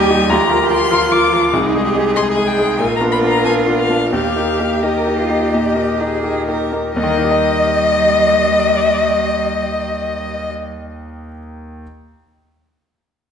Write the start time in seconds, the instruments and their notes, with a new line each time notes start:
Already playing: grand piano D#2 G3 D#4 G4, violin G4, cello G4
0.00 violin G#5
0.10 grand piano G3 D#4 G4
0.30 grand piano D2, violin F4 A#5, cello G4
0.50 grand piano F3 F4 A#4
0.70 grand piano F3 F4 A#4, violin C6
0.91 grand piano F3 F4 A#4, cello F4
1.11 grand piano F3 F4 A#4, violin D6
1.32 grand piano F3 F4 A#4
1.53 grand piano C2, cello D#4, violin G#4
1.74 grand piano G#3 D#4 G#4
1.85 cello G4
1.95 grand piano G#3 D#4 G#4
2.16 grand piano G#3 D#4 G#4, cello G#4, violin C6
2.32 violin G#5
2.37 grand piano G#3 D#4 G#4
2.47 violin G5
2.58 grand piano G#3 D#4 G#4
2.79 grand piano A#1, cello F4, violin A#4 G#5
2.96 grand piano B3, violin A#5
3.01 grand piano D4 F4
3.12 violin B5
3.22 grand piano B3 D4 F4
3.29 violin A#5
3.45 grand piano B3 D4 F4, violin G#5
3.66 grand piano B3 D4 F4
3.79 violin F5
3.89 grand piano B3 D4 F4
4.13 grand piano D#2, violin G4 F5, cello G4
4.36 grand piano A#3 D#4 G4
4.60 grand piano A#3 D#4 G4
4.83 grand piano A#3 D#4 G4, cello A#4, violin D#5
5.07 grand piano A#3 D#4 G4
5.19 cello F4
5.29 grand piano A#3 D#4 G4
5.53 grand piano A#2, cello G4
5.76 grand piano A#3 D#4 G4
6.00 grand piano A#3 D#4 G4, cello G#4
6.23 grand piano A#3 D#4 G4
6.48 grand piano A#3 D#4 G4, cello A#4
6.73 grand piano A#3 D#4 G4
6.96 grand piano D#2, cello G3, violin D#5
7.03 grand piano D#3
7.10 grand piano A#3
7.17 grand piano D#4
7.24 grand piano G4
7.31 grand piano D#5